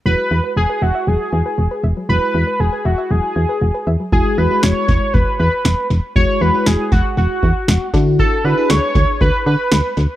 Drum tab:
SD |--------|--------|--o---o-|--o---o-|
BD |--------|--------|o--oo---|o--o-o-o|

SD |--o---o-|
BD |o--oo---|